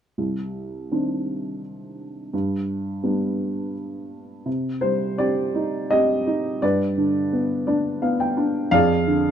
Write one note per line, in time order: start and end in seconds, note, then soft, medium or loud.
0.18 2.29 C2 soft
0.91 1.61 D#3 soft
0.91 1.61 C4 soft
0.91 1.61 D4 soft
2.33 4.43 G2 soft
3.03 3.72 G3 soft
3.03 3.72 B3 soft
3.03 3.73 D4 soft
4.46 6.58 C3 medium
4.81 6.23 G3 soft
4.81 5.16 C5 medium
5.18 5.90 C4 soft
5.18 5.91 G4 medium
5.18 5.93 D5 medium
5.55 6.25 D#4 soft
5.91 6.61 C4 soft
5.91 6.59 G4 medium
5.91 6.65 D#5 medium
6.27 6.61 D#4 soft
6.62 8.69 G2 medium
6.62 8.00 G4 medium
6.62 8.00 B4 medium
6.62 7.66 D5 medium
6.98 8.34 D3 soft
7.33 8.01 B3 soft
7.67 8.36 D4 soft
7.67 8.00 D5 medium
8.02 8.71 B3 soft
8.02 8.19 F5 medium
8.20 8.69 G5 medium
8.37 8.72 D4 medium
8.71 9.31 F2 medium
8.71 9.31 G#4 medium
8.71 9.31 D5 medium
8.71 9.31 F5 loud
9.07 9.31 D3 medium